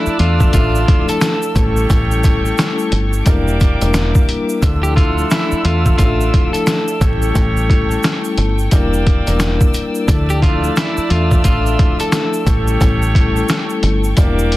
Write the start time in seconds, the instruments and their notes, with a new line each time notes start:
Already playing: saxophone section A3 D4 D5, clean electric guitar E4, string section D5 E5 E6
0.06 muted fingered electric bass stroke, shaker
0.18 fingered electric bass E2, vibraphone A3 D4 F4 A4 E5, clean electric guitar F4, closed hi-hat
0.40 kick, shaker
0.53 fingered electric bass A1, clean electric guitar F4, kick, closed hi-hat, shaker
0.75 shaker
0.85 vibraphone F3 A3 D4 E4 A4, kick, closed hi-hat
1.09 clean electric guitar A4, closed hi-hat, shaker
1.21 snare, closed hi-hat, shaker
1.42 shaker
1.54 fingered electric bass A1, vibraphone G3 A3 C#4 E4 A4, saxophone section A3 G4 C#5, string section A4 G5 C#6, kick, closed hi-hat, shaker
1.77 shaker
1.89 fingered electric bass A1, vibraphone G3 A3 C#4 E4 A4, kick, closed hi-hat, shaker
2.11 shaker
2.24 kick, closed hi-hat, shaker
2.44 vibraphone G3 A3 C#4 E4 A4, shaker
2.58 snare, closed hi-hat, shaker
2.79 shaker
2.92 fingered electric bass G1, closed hi-hat
3.13 shaker
3.25 fingered electric bass E1, vibraphone G3 A#3 D4 E4 A#4, saxophone section A#3 G4 D5, string section G4 E5 D6, kick, closed hi-hat, shaker
3.48 shaker
3.60 kick, closed hi-hat, shaker
3.81 fingered electric bass E1, vibraphone G3 A#3 D4 E4 A#4, closed hi-hat, shaker
3.94 snare, closed hi-hat, shaker
4.15 kick, shaker
4.29 closed hi-hat
4.49 shaker
4.61 fingered electric bass D2, saxophone section D3 A4 E5, vibraphone F3 A3 D4 E4 A4, string section D5 E5 E6, kick, closed hi-hat, shaker
4.83 clean electric guitar G4, shaker
4.96 clean electric guitar F4, kick, closed hi-hat
5.17 vibraphone F3 A3 D4 E4 A4, shaker
5.30 clean electric guitar E4, snare, closed hi-hat, shaker
5.52 muted fingered electric bass stroke, shaker
5.63 fingered electric bass E2, vibraphone A3 D4 F4 A4 E5, clean electric guitar F4, closed hi-hat
5.86 kick, shaker
5.98 fingered electric bass A1, clean electric guitar F4, kick, closed hi-hat, shaker
6.21 shaker
6.31 vibraphone F3 A3 D4 E4 A4, kick, closed hi-hat
6.53 clean electric guitar A4, closed hi-hat, shaker
6.67 snare, closed hi-hat, shaker
6.88 shaker
7.00 fingered electric bass A1, vibraphone G3 A3 C#4 E4 A4, saxophone section A3 G4 C#5, string section A4 G5 C#6, kick, closed hi-hat, shaker
7.22 shaker
7.34 fingered electric bass A1, vibraphone G3 A3 C#4 E4 A4, kick, closed hi-hat, shaker
7.57 shaker
7.70 kick, closed hi-hat
7.89 vibraphone G3 A3 C#4 E4 A4, shaker
8.03 snare, closed hi-hat, shaker
8.24 shaker
8.38 fingered electric bass G1, closed hi-hat
8.59 shaker
8.71 fingered electric bass E1, vibraphone G3 A#3 D4 E4 A#4, saxophone section A#3 G4 D5, string section D5 E6, kick, closed hi-hat, shaker
8.94 shaker
9.07 kick, closed hi-hat
9.26 fingered electric bass E1, vibraphone G3 A#3 D4 E4 A#4, closed hi-hat, shaker
9.40 snare, closed hi-hat, shaker
9.61 kick, shaker
9.74 closed hi-hat, shaker
9.95 shaker
10.07 fingered electric bass D2, vibraphone F3 A3 D4 E4 A4, saxophone section A3 D4 D5, string section E5 E6, kick, closed hi-hat, shaker
10.30 clean electric guitar G4, shaker
10.42 clean electric guitar F4, kick, closed hi-hat
10.62 vibraphone F3 A3 D4 E4 A4, shaker
10.76 clean electric guitar E4, snare, closed hi-hat, shaker
10.97 muted fingered electric bass stroke, shaker
11.09 fingered electric bass E2, vibraphone A3 D4 F4 A4 E5, clean electric guitar F4, closed hi-hat
11.31 kick, shaker
11.44 fingered electric bass A1, clean electric guitar F4, kick, closed hi-hat, shaker
11.66 shaker
11.76 vibraphone F3 A3 D4 E4 A4, kick, closed hi-hat
12.00 clean electric guitar A4, closed hi-hat, shaker
12.12 snare, closed hi-hat, shaker
12.33 shaker
12.45 fingered electric bass A1, vibraphone G3 C#4 E4 A4, saxophone section A3 G4 C#5, string section A4 G5 C#6, kick, closed hi-hat, shaker
12.68 shaker
12.80 fingered electric bass A1, vibraphone G3 A3 C#4 E4 A4, kick, closed hi-hat, shaker
13.02 shaker
13.15 kick, closed hi-hat
13.35 vibraphone G3 A3 C#4 E4 A4, shaker
13.49 snare, closed hi-hat, shaker
13.70 shaker
13.83 fingered electric bass G1, closed hi-hat
14.04 shaker
14.16 fingered electric bass E1, vibraphone G3 A#3 D4 E4 A#4, saxophone section A#3 G4 D5, string section G4 E5 D6, kick, closed hi-hat, shaker
14.39 shaker
14.52 closed hi-hat